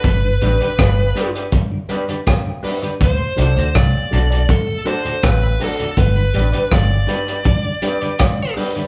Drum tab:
HH |x-xxx-xxx-xxx-ox|x-xxx-xxx-xxx-ox|x-xxx-xxx-xxx-ox|
SD |----r-------r---|----r-------r---|----r-------r---|
BD |o---o---o---o---|o---o---o---o---|o---o---o---o---|